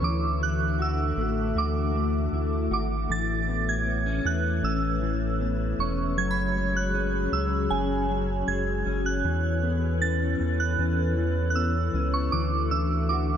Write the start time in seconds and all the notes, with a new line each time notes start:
0.01 D2 D3 E3 D4 F#4 A4 E5 D6
0.40 E4 F#6
0.79 F#4 E6
1.17 A1 A3
1.56 D2 F#4 D6
1.94 A3
2.32 D2 E4
2.71 G#1 F#4 D6
3.09 A1 E3 A3 B4 C#5 A6
3.48 B3
3.69 G#6
3.87 B3
4.06 C#4
4.25 E2 E3 F#6
4.63 A1 C#4 E6
5.02 E3
5.40 B3
5.78 E1 C#4 C#6
6.16 F#1 F#3 F#4 G#4 G#6
6.31 B5
6.55 G#3
6.76 F#6
6.94 C#4
7.32 C#2 F#3 E6
7.70 F#1 C#4 G#5
8.09 F#3
8.47 F#1 G#3 G#6
8.86 F#1 C#4
9.06 F#6
9.24 E2 E3 E4 A4 B4
9.63 B3
10.01 C#4 A6
10.40 E2 E3
10.60 F#6
10.79 E2 C#4
11.17 E3
11.50 F#6
11.55 B3 E6
11.94 C#2 C#4
12.14 C#6
12.32 D2 E3 D4 F#4 E5 D6
12.71 D4 E6
13.09 F#4 D6